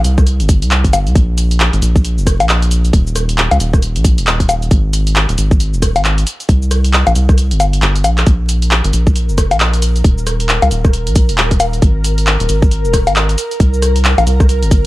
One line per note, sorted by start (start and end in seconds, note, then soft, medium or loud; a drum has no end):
0.04 0.42 C2 medium
0.04 closed hi-hat loud
0.04 shaker medium
0.18 kick loud
0.18 cross-stick medium
0.18 shaker soft
0.27 closed hi-hat medium
0.27 shaker soft
0.40 0.64 G1 loud
0.40 closed hi-hat medium
0.40 shaker soft
0.49 kick loud
0.49 closed hi-hat loud
0.49 shaker medium
0.62 0.86 C2 loud
0.62 closed hi-hat medium
0.62 shaker soft
0.71 clap loud
0.71 shaker soft
0.84 0.92 G1 loud
0.84 kick medium
0.84 closed hi-hat medium
0.84 shaker soft
0.93 1.08 G1 medium
0.93 closed hi-hat loud
0.93 high bongo medium
0.93 shaker medium
1.07 1.14 C2 loud
1.07 closed hi-hat soft
1.07 shaker soft
1.16 1.71 A#1 loud
1.16 kick loud
1.16 closed hi-hat medium
1.16 shaker soft
1.38 closed hi-hat loud
1.38 shaker medium
1.51 closed hi-hat medium
1.51 shaker soft
1.60 clap loud
1.60 shaker soft
1.73 1.81 G#1 medium
1.73 closed hi-hat medium
1.73 shaker soft
1.82 2.19 A#1 medium
1.82 closed hi-hat loud
1.82 shaker medium
1.96 kick loud
1.96 shaker soft
2.04 closed hi-hat medium
2.04 shaker soft
2.18 2.42 F1 loud
2.18 shaker soft
2.27 kick medium
2.27 cross-stick medium
2.27 closed hi-hat loud
2.27 shaker medium
2.40 2.92 A#1 medium
2.40 closed hi-hat medium
2.40 high bongo medium
2.40 shaker soft
2.49 clap loud
2.49 shaker soft
2.62 closed hi-hat medium
2.62 shaker soft
2.71 closed hi-hat loud
2.71 shaker medium
2.85 closed hi-hat soft
2.85 shaker soft
2.93 3.48 D#1 loud
2.93 kick loud
2.93 closed hi-hat medium
2.93 shaker soft
3.07 shaker soft
3.16 cross-stick medium
3.16 closed hi-hat loud
3.16 shaker medium
3.29 closed hi-hat medium
3.29 shaker soft
3.38 clap loud
3.38 shaker soft
3.51 3.59 C#2 medium
3.51 closed hi-hat medium
3.51 high bongo medium
3.51 shaker soft
3.60 3.97 D#1 medium
3.60 closed hi-hat loud
3.60 shaker medium
3.73 kick loud
3.73 cross-stick soft
3.73 shaker soft
3.82 closed hi-hat medium
3.82 shaker soft
3.96 4.20 A#1 loud
3.96 closed hi-hat medium
3.96 shaker soft
4.04 kick loud
4.04 closed hi-hat loud
4.04 shaker medium
4.18 4.69 D#1 medium
4.18 closed hi-hat medium
4.18 shaker soft
4.27 clap loud
4.27 shaker soft
4.40 kick medium
4.40 closed hi-hat medium
4.40 shaker soft
4.49 closed hi-hat loud
4.49 high bongo medium
4.49 shaker medium
4.62 closed hi-hat soft
4.62 shaker soft
4.71 5.26 G#1 loud
4.71 kick loud
4.71 closed hi-hat medium
4.71 shaker soft
4.93 closed hi-hat loud
4.93 shaker medium
5.07 closed hi-hat medium
5.07 shaker soft
5.16 clap loud
5.16 shaker soft
5.29 5.37 D#1 medium
5.29 closed hi-hat medium
5.29 shaker soft
5.38 5.75 G#1 medium
5.38 closed hi-hat loud
5.38 shaker medium
5.51 kick loud
5.51 shaker soft
5.60 closed hi-hat medium
5.60 shaker soft
5.73 5.97 D#1 loud
5.73 shaker soft
5.82 kick medium
5.82 cross-stick medium
5.82 closed hi-hat loud
5.82 shaker medium
5.96 6.25 G#1 loud
5.96 closed hi-hat medium
5.96 high bongo medium
5.96 shaker soft
6.05 clap loud
6.05 shaker soft
6.18 closed hi-hat medium
6.18 shaker soft
6.27 closed hi-hat loud
6.27 shaker medium
6.40 closed hi-hat soft
6.40 shaker soft
6.49 7.04 C2 loud
6.49 kick loud
6.49 closed hi-hat medium
6.49 shaker soft
6.62 shaker soft
6.71 cross-stick medium
6.71 closed hi-hat loud
6.71 shaker medium
6.85 closed hi-hat medium
6.85 shaker soft
6.93 clap loud
6.93 shaker soft
7.07 7.14 A#1 medium
7.07 closed hi-hat medium
7.07 high bongo medium
7.07 shaker soft
7.15 7.53 C2 medium
7.15 closed hi-hat loud
7.15 shaker medium
7.29 kick loud
7.29 cross-stick medium
7.29 shaker soft
7.38 closed hi-hat medium
7.38 shaker soft
7.51 7.82 G1 loud
7.51 closed hi-hat medium
7.51 shaker soft
7.60 closed hi-hat loud
7.60 high bongo medium
7.60 shaker medium
7.73 closed hi-hat medium
7.73 shaker soft
7.82 8.06 G1 loud
7.82 clap loud
7.82 shaker soft
7.96 closed hi-hat medium
7.96 shaker soft
8.04 8.24 A#1 loud
8.04 closed hi-hat loud
8.04 high bongo medium
8.04 shaker medium
8.18 clap medium
8.18 closed hi-hat soft
8.18 shaker soft
8.27 8.82 A#1 loud
8.27 14.87 A#4 medium
8.27 kick loud
8.27 closed hi-hat medium
8.27 shaker soft
8.49 closed hi-hat loud
8.49 shaker medium
8.62 closed hi-hat medium
8.62 shaker soft
8.71 clap loud
8.71 shaker soft
8.84 8.92 G#1 medium
8.84 closed hi-hat medium
8.84 shaker soft
8.93 9.31 A#1 medium
8.93 closed hi-hat loud
8.93 shaker medium
9.07 kick loud
9.07 shaker soft
9.16 closed hi-hat medium
9.16 shaker soft
9.29 9.53 F1 loud
9.29 shaker soft
9.38 kick medium
9.38 cross-stick medium
9.38 closed hi-hat loud
9.38 shaker medium
9.51 10.03 A#1 medium
9.51 closed hi-hat medium
9.51 high bongo medium
9.51 shaker soft
9.60 clap loud
9.60 shaker soft
9.73 closed hi-hat medium
9.73 shaker soft
9.82 closed hi-hat loud
9.82 shaker medium
9.96 closed hi-hat soft
9.96 shaker soft
10.04 10.60 D#1 loud
10.04 kick loud
10.04 closed hi-hat medium
10.04 shaker soft
10.18 shaker soft
10.27 cross-stick medium
10.27 closed hi-hat loud
10.27 shaker medium
10.40 closed hi-hat medium
10.40 shaker soft
10.49 clap loud
10.49 shaker soft
10.62 10.70 C#2 medium
10.62 closed hi-hat medium
10.62 high bongo medium
10.62 shaker soft
10.71 11.08 D#1 medium
10.71 closed hi-hat loud
10.71 shaker medium
10.85 kick loud
10.85 cross-stick medium
10.85 shaker soft
10.93 closed hi-hat medium
10.93 shaker soft
11.07 11.31 A#1 loud
11.07 closed hi-hat medium
11.07 shaker soft
11.16 kick loud
11.16 closed hi-hat loud
11.16 shaker medium
11.29 11.80 D#1 loud
11.29 closed hi-hat medium
11.29 shaker soft
11.38 clap loud
11.38 shaker soft
11.51 kick medium
11.51 closed hi-hat medium
11.51 shaker soft
11.60 closed hi-hat loud
11.60 high bongo medium
11.60 shaker medium
11.73 closed hi-hat soft
11.73 shaker soft
11.82 12.37 G#1 loud
11.82 kick loud
11.82 closed hi-hat medium
11.82 shaker soft
12.04 closed hi-hat loud
12.04 shaker medium
12.18 closed hi-hat medium
12.18 shaker soft
12.27 clap loud
12.27 shaker soft
12.40 12.48 D#1 medium
12.40 closed hi-hat medium
12.40 shaker soft
12.49 12.86 G#1 medium
12.49 closed hi-hat loud
12.49 shaker medium
12.62 kick loud
12.62 shaker soft
12.71 closed hi-hat medium
12.71 shaker soft
12.85 13.08 D#1 loud
12.85 shaker soft
12.93 kick medium
12.93 cross-stick medium
12.93 closed hi-hat loud
12.93 shaker medium
13.07 13.36 G#1 medium
13.07 closed hi-hat medium
13.07 high bongo medium
13.07 shaker soft
13.16 clap loud
13.16 shaker soft
13.29 closed hi-hat medium
13.29 shaker soft
13.38 closed hi-hat loud
13.38 shaker medium
13.51 closed hi-hat soft
13.51 shaker soft
13.60 14.15 C2 loud
13.60 kick loud
13.60 closed hi-hat medium
13.60 shaker soft
13.74 shaker soft
13.82 cross-stick medium
13.82 closed hi-hat loud
13.82 shaker medium
13.96 closed hi-hat medium
13.96 shaker soft
14.05 clap loud
14.05 shaker soft
14.18 14.26 A#1 medium
14.18 closed hi-hat medium
14.18 high bongo medium
14.18 shaker soft
14.27 14.64 C2 medium
14.27 closed hi-hat loud
14.27 shaker medium
14.40 kick loud
14.40 cross-stick medium
14.40 shaker soft
14.49 closed hi-hat medium
14.49 shaker soft
14.62 14.86 G1 loud
14.62 closed hi-hat medium
14.62 shaker soft
14.71 kick loud
14.71 closed hi-hat loud
14.71 shaker medium